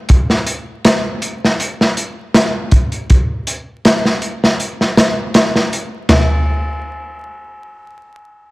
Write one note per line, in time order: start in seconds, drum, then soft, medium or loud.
0.09 kick medium
0.09 closed hi-hat medium
0.30 snare soft
0.47 closed hi-hat medium
0.85 snare loud
0.85 closed hi-hat medium
1.22 closed hi-hat medium
1.44 snare soft
1.60 closed hi-hat medium
1.81 snare soft
1.97 closed hi-hat medium
2.35 snare loud
2.35 closed hi-hat medium
2.71 kick medium
2.71 closed hi-hat medium
2.92 closed hi-hat soft
3.10 kick loud
3.10 closed hi-hat medium
3.47 closed hi-hat medium
3.85 snare loud
3.85 closed hi-hat medium
4.05 snare soft
4.22 closed hi-hat medium
4.44 snare soft
4.60 closed hi-hat medium
4.81 snare soft
4.97 snare loud
4.97 closed hi-hat medium
5.34 snare loud
5.34 closed hi-hat medium
5.56 snare soft
5.73 closed hi-hat medium
6.09 snare medium
6.09 floor tom medium
6.09 ride bell medium